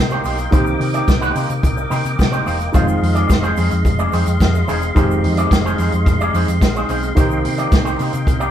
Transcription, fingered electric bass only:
Already playing: C3
0.24 B1
0.53 C2
0.80 C3
1.08 C2
1.35 C3
1.50 C3
1.63 C2
1.91 C3
2.05 C3
2.19 C3
2.46 E1
2.74 F1
3.02 F2
3.30 F1
3.58 F2
3.72 F2
3.85 F1
4.13 F2
4.27 F2
4.41 F2
4.68 E1
4.96 F1
5.23 F2
5.51 F1
5.79 F2
5.93 F2
6.07 F1
6.34 F2
6.48 F2
6.62 A#1
6.89 B1
7.17 C2
7.44 C3
7.72 C2
8.00 C3
8.13 C3
8.27 C2

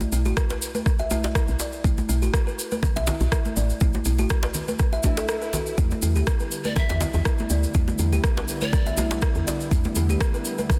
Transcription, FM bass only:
0.12 B1
0.25 A1
1.49 B1
1.84 B1
2.09 B1
2.22 A1
2.96 B1
3.21 B1
3.57 A1
3.81 B1
4.06 B1
4.19 A1
5.78 E2
6.03 E2
6.16 D2
6.90 E2
7.14 E2
7.50 D2
7.75 E2
7.99 E2
8.12 D2
9.36 E2
9.71 E2
9.96 E2
10.09 D2

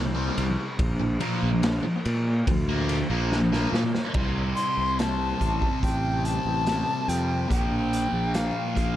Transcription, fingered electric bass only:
Already playing: C2
0.38 C2
0.79 A#1
1.42 A#1
2.06 A#2
2.48 D2
3.10 A#1
3.72 A#2
4.14 C2
4.77 C2
5.41 A1
5.83 A1
6.45 A1
7.08 F2
7.50 A#1
8.12 A#1
8.76 A#1

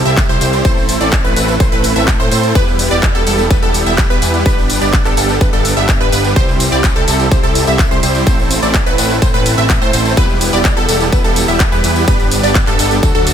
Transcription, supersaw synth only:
0.05 G3 C4 E4 G4 E5
0.29 G3 C4 E4 G4 C5
0.41 G3 C4 E4 G4 C5
0.65 A3 C4 E4 A4 C5
1.00 A3 C4 E4 A4 D5
1.24 A3 C4 E4 A4 B4
1.36 A3 C4 E4 A4 B4
1.60 A3 C4 E4 A4 C5
1.72 A3 C4 E4 A4 B4
1.96 A3 C4 E4 A4 E5
2.19 A3 C4 E4 A4 C5
2.31 A3 C4 E4 A4 C5
2.55 G3 B3 E4 G4 B4
2.91 G3 B3 E4 G4 D5
3.15 G3 B3 E4 G4 A4
3.27 G3 B3 E4 G4 A4
3.50 G3 B3 E4 G4 B4
3.62 G3 B3 E4 G4 A4
3.86 G3 B3 E4 G4 E5
4.10 G3 B3 E4 G4 B4
4.22 G3 B3 E4 G4 B4
4.46 G3 B3 D4 G4 B4
4.81 G3 B3 D4 G4 D5
5.05 G3 B3 D4 G4 A4
5.17 G3 B3 D4 G4 A4
5.41 G3 B3 D4 G4 B4
5.53 G3 B3 D4 G4 A4
5.77 G3 B3 D4 G4 E5
6.00 G3 B3 D4 G4 B4
6.12 G3 B3 D4 G4 B4
6.36 G3 C4 E4 G4 C5
6.72 G3 C4 E4 G4 D5
6.96 G3 C4 E4 G4 A4
7.08 G3 C4 E4 G4 A4
7.32 G3 C4 E4 G4 C5
7.43 G3 C4 E4 G4 A4
7.67 G3 C4 E4 G4 E5
7.91 G3 C4 E4 G4 C5
8.03 G3 C4 E4 G4 C5
8.27 A3 C4 E4 A4 C5
8.62 A3 C4 E4 A4 D5
8.86 A3 C4 E4 A4 B4
8.98 A3 C4 E4 A4 B4
9.22 A3 C4 E4 A4 C5
9.34 A3 C4 E4 A4 B4
9.58 A3 C4 E4 A4 E5
9.81 A3 C4 E4 A4 C5
9.93 A3 C4 E4 A4 C5
10.17 G3 B3 E4 G4 B4
10.53 G3 B3 E4 G4 D5
10.77 G3 B3 E4 G4 A4
10.89 G3 B3 E4 G4 A4
11.12 G3 B3 E4 G4 B4
11.24 G3 B3 E4 G4 A4
11.48 G3 B3 E4 G4 E5
11.72 G3 B3 E4 G4 B4
11.84 G3 B3 E4 G4 B4
12.08 G3 B3 D4 G4 B4
12.43 G3 B3 D4 G4 D5
12.67 G3 B3 D4 G4 A4
12.79 G3 B3 D4 G4 A4
13.03 F#3 A3 D4 F#4 A4
13.15 F#3 A3 D4 F#4 A4

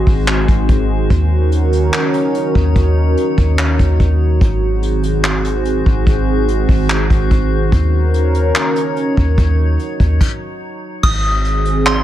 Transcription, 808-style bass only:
0.07 G#1
0.48 G#1
0.69 G#1
1.10 D#2
2.55 D#2
2.76 D#2
3.38 D#2
3.79 D#2
4.00 D#2
4.41 G#1
5.86 G#1
6.07 G#1
6.69 G#1
7.10 G#1
7.31 G#1
7.72 D#2
9.17 D#2
9.38 D#2
10.00 D#2
11.03 G#1

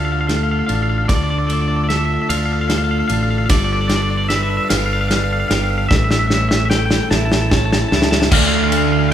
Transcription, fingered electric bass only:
Already playing: D2
0.70 A1
1.09 D2
2.30 D2
3.10 A1
3.50 G1
4.71 G1
5.51 G1
5.91 A1
7.11 A1
7.92 C#2
8.32 D2

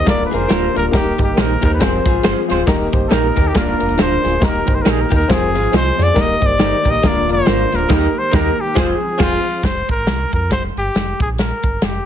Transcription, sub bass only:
0.07 D1
0.33 F1
0.50 D1
0.76 D1
0.93 D#1
1.19 G1
1.37 A#1
1.63 D#2
1.81 F1
2.06 G#1
2.25 G1
2.50 D1
2.68 D#1
2.93 G1
3.12 A#1
3.37 D#2
3.56 D1
3.81 F1
3.90 D#1
3.99 D1
4.24 D1
4.42 D#1
4.68 G1
4.87 A#1
5.12 D#2
5.30 F1
5.55 G#1
5.73 C2
5.99 F2
6.16 D#1
6.42 G1
6.85 A#1
7.04 D1
7.29 F1
7.48 G#1
7.72 D1
7.90 D#2
8.33 D#2
8.77 F1
9.20 F1
9.64 F1
9.89 G#1
10.06 C2
10.33 F2
10.51 F1
10.76 G1
10.95 F1
11.20 A#1
11.64 G1
11.82 F1

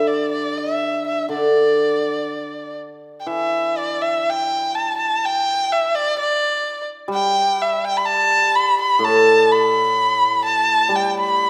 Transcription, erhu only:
0.07 D5
0.31 D5
0.58 E5
1.07 E5
1.33 D5
3.20 G5
3.27 E5
3.77 D5
4.02 E5
4.30 G5
4.75 A5
4.97 A5
5.25 G5
5.72 E5
5.95 D5
6.19 D5
7.13 G5
7.62 E5
7.85 G5
7.97 B5
8.05 A5
8.56 B5
8.81 B5
9.04 A5
9.52 B5
10.45 A5
10.96 G5
11.20 B5

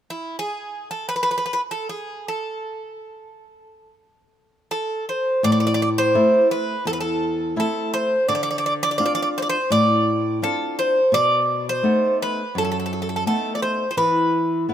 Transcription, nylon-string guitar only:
5.43 A2
6.14 A3 C4 E4
6.85 E2
7.56 A3 C4 E4
8.29 D3
8.99 C4 D4 F4
9.70 A2
10.42 C4 D4 F4
11.12 B2
11.83 A3 B3 D#4
12.55 F#2
13.26 A3 B3 D#4
13.97 E3
14.69 B3 E4 B4

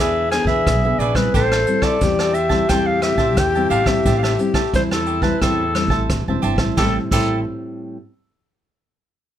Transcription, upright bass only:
0.00 E2
0.45 E2
0.67 B1
0.99 A#1
1.34 A1
2.02 E2
2.70 E2
3.16 A1
3.37 E2
3.70 A1
4.06 A1
4.74 E2
5.42 E2
5.88 A1
6.10 D1
6.28 E1
6.43 G1
6.56 A1
6.78 A1
7.11 A1

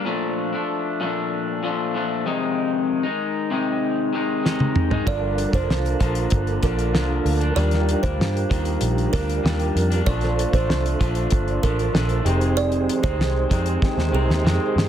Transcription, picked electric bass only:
5.07 G1
5.53 F1
5.69 C2
6.01 A#1
6.32 G1
6.63 A#1
6.94 C2
7.25 D2
7.56 D#2
8.03 D2
8.19 G2
8.51 D#2
8.81 A#1
9.14 D2
9.44 D#2
9.76 F2
10.07 A#1
10.53 A1
10.69 C2
11.01 A#1
11.32 G1
11.63 A1
11.94 A#1
12.25 F1
13.04 D2
13.19 C2
13.51 F2
13.97 D#2
14.13 C2
14.29 D#2
14.44 F2
14.76 G2

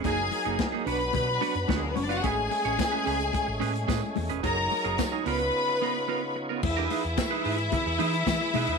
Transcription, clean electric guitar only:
0.05 A#3 D#4 G#4
0.18 muted clean electric guitar stroke
0.32 muted clean electric guitar stroke
0.45 A#3 D#4 G#4
0.72 A#3 D#4 G#4
0.86 D4 F#4 B4
1.00 muted clean electric guitar stroke
1.27 muted clean electric guitar stroke
1.41 D4 F#4 B4
1.55 muted clean electric guitar stroke
1.68 D4 F#4 B4
1.82 muted clean electric guitar stroke
1.96 muted clean electric guitar stroke
2.09 D4 F#4 B4
2.24 C#4 G#4 B4
2.37 muted clean electric guitar stroke
2.51 muted clean electric guitar stroke
2.65 C#4 G#4 C#5
2.78 muted clean electric guitar stroke
2.92 C#4 G#4 B4
3.05 C#4 G#4 B4
3.20 muted clean electric guitar stroke
3.47 muted clean electric guitar stroke
3.60 C#4 G#4 B4
3.73 muted clean electric guitar stroke
3.88 C#4 G#4 B4
4.02 muted clean electric guitar stroke
4.16 muted clean electric guitar stroke
4.30 C#4 G#4 B4
4.43 D#4 G#4 A#4
4.58 muted clean electric guitar stroke
4.71 muted clean electric guitar stroke
4.84 D#4 G#4 A#4
4.98 muted clean electric guitar stroke
5.12 D#4 G#4 A#4
5.26 B3 F4 A#4
5.41 muted clean electric guitar stroke
5.68 muted clean electric guitar stroke
5.82 B3 F4 A#4
5.95 muted clean electric guitar stroke
6.08 B3 F4 A#4
6.23 muted clean electric guitar stroke
6.36 muted clean electric guitar stroke
6.49 B3 F4 A#4
6.63 muted clean electric guitar stroke
6.77 D#4 G#4 B4
6.90 D#4 G#4 B4
7.03 muted clean electric guitar stroke
7.17 muted clean electric guitar stroke
7.31 D#4 G#4 B4
7.44 D#4 G#4 B4
7.73 muted clean electric guitar stroke
7.86 muted clean electric guitar stroke
7.99 D#4 G#4 B4
8.14 muted clean electric guitar stroke
8.27 muted clean electric guitar stroke
8.41 muted clean electric guitar stroke
8.54 D#4 G#4 B4
8.68 D#4 G#4 B4

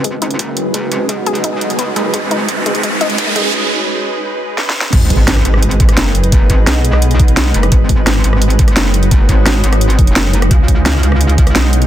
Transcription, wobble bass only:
Already playing: G#1
0.39 F#1
0.92 G#1
1.09 B1
1.96 F#1
2.14 G#1
2.66 G#1
3.18 F#1
4.93 G#1
5.45 G#1
5.97 F#1
6.50 G#1
6.67 B1
7.54 F#1
7.72 G#1
8.24 G#1
8.77 F#1
9.29 G#1
9.46 G#1
9.64 G#1
10.16 F#1
10.51 C#2
11.03 C#2
11.56 B1

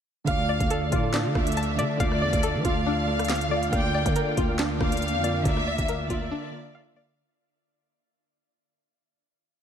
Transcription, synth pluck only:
0.28 F5
0.49 D5
0.70 A4
0.92 F4
1.14 D4
1.57 A5
1.79 D5
2.00 F5
2.22 D5
2.43 A4
2.65 F4
2.86 D4
3.30 F5
3.51 D5
3.73 F5
3.94 D5
4.16 A#4
4.37 F4
4.59 D4
5.24 D5
5.67 D5
5.89 A#4
6.10 F4
6.31 D4
6.75 F5
6.96 D5

